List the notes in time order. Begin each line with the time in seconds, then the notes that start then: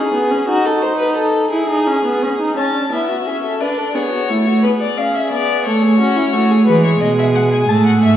Already playing: C#4 G#4
0.13 B3
0.31 C#4
0.49 D#4 F#4
0.66 A4
0.82 C5
0.99 B4
1.17 A4
1.52 E4 G#4
1.69 D#4
1.87 C#4
2.05 B3
2.22 C#4
2.39 D#4
2.56 C#4 A5
2.73 D4
2.92 B3 E4 E5
3.09 F#4
3.26 C#4 G#4
3.43 A4
3.60 D4 B4 D5
3.77 A4
3.95 B3 G#4 C#5
4.13 F#4
4.30 A3 E4
4.47 F#4
4.63 B3 G#4 B4
4.81 D5
4.97 C#4 F5
5.14 E5
5.32 B3 D5
5.65 A3 A4 C#5
5.82 G#4
5.99 C#4 F#4
6.16 E4
6.34 A3 F#4
6.51 G#4
6.67 E3 G#3 G#4 B4
6.84 C#5
7.01 B2 D#5
7.18 E5
7.35 F#5
7.52 G#5
7.68 A2 A3 A5
7.86 F#5
8.03 G#2 E5